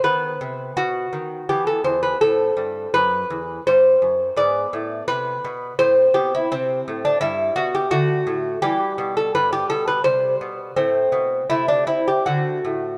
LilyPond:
<<
  \new Staff \with { instrumentName = "Lute" } { \time 3/4 \key a \dorian \tempo 4 = 84 b'4 fis'4 g'16 a'16 c''16 b'16 | a'4 b'4 c''4 | d''4 b'4 c''8 g'16 e'16 | \key c \lydian c'8. d'16 e'8 fis'16 g'16 fis'4 |
g'8. a'16 b'16 g'16 a'16 b'16 c''4 | c'4 e'16 d'16 e'16 g'16 fis'4 | }
  \new Staff \with { instrumentName = "Lute" } { \clef bass \time 3/4 \key a \dorian << { b2 b4 | c'2. | b2 c'4 | \key c \lydian r2 a4 |
g2 g4 | a4 a4 a4 | } \\ { dis8 c8 b,8 dis8 e8 e,8 | a,8 g,8 fis,8 e,8 g,8 fis,8 | gis,8 a,8 c8 b,8 a,8 b,8 | c8 a,8 g,8 b,8 d8 a,8 |
e8 b,8 g,8 b,8 c8 b,8 | a,8 b,8 c8 c'8 d8 a,8 | } >> }
>>